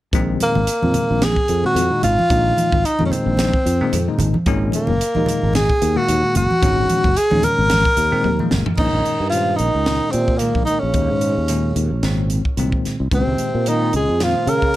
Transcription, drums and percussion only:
0.13 kick, closed hi-hat
0.40 closed hi-hat, high conga
0.55 low conga
0.67 closed hi-hat
0.83 high conga
0.94 closed hi-hat, low conga
1.22 snare, closed hi-hat, high conga
1.36 kick
1.48 closed hi-hat
1.76 closed hi-hat
2.03 closed hi-hat, low conga
2.19 high conga
2.30 kick, closed hi-hat
2.57 closed hi-hat, high conga
2.72 kick, low conga
2.85 closed hi-hat
2.99 high conga
3.12 closed hi-hat, low conga
3.37 snare, closed hi-hat, high conga
3.54 kick
3.67 closed hi-hat
3.93 closed hi-hat
4.19 closed hi-hat, low conga
4.34 high conga
4.46 kick, closed hi-hat
4.72 closed hi-hat, high conga
4.87 low conga
5.01 closed hi-hat
5.15 high conga
5.26 closed hi-hat, low conga
5.53 snare, closed hi-hat, high conga
5.70 kick
5.82 closed hi-hat
6.08 closed hi-hat
6.35 closed hi-hat, low conga
6.50 high conga
6.63 kick, closed hi-hat
6.89 closed hi-hat, high conga
7.04 kick, low conga
7.16 closed hi-hat
7.31 high conga
7.43 closed hi-hat, low conga
7.70 snare, closed hi-hat, high conga
7.85 kick
7.97 closed hi-hat
8.24 high tom
8.39 high conga
8.51 snare, low conga
8.66 floor tom, high conga
8.77 kick, crash
9.05 closed hi-hat
9.32 closed hi-hat
9.59 closed hi-hat
9.86 snare, closed hi-hat
10.13 closed hi-hat
10.28 kick
10.39 closed hi-hat
10.55 kick
10.67 closed hi-hat
10.94 kick, closed hi-hat
11.21 closed hi-hat
11.48 closed hi-hat
11.76 closed hi-hat
12.03 snare, closed hi-hat
12.30 closed hi-hat
12.45 kick
12.57 closed hi-hat
12.72 kick
12.85 snare, closed hi-hat
13.11 kick, closed hi-hat
13.38 closed hi-hat
13.66 closed hi-hat
13.93 closed hi-hat
14.20 snare, closed hi-hat
14.47 closed hi-hat
14.62 kick

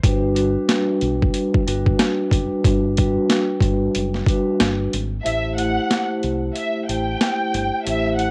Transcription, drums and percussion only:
0.03 kick, closed hi-hat
0.36 closed hi-hat
0.69 snare, closed hi-hat
1.01 closed hi-hat
1.22 kick
1.34 closed hi-hat
1.54 kick
1.68 closed hi-hat
1.86 kick
1.99 snare, closed hi-hat
2.31 kick, closed hi-hat
2.64 kick, closed hi-hat
2.97 kick, closed hi-hat
3.30 snare, closed hi-hat
3.61 kick, closed hi-hat
3.95 closed hi-hat
4.14 snare
4.26 kick, closed hi-hat
4.60 snare, closed hi-hat
4.93 closed hi-hat
5.26 closed hi-hat
5.58 closed hi-hat
5.91 snare, closed hi-hat
6.23 closed hi-hat
6.56 closed hi-hat
6.89 closed hi-hat
7.21 snare, closed hi-hat
7.54 closed hi-hat
7.87 closed hi-hat
8.19 closed hi-hat

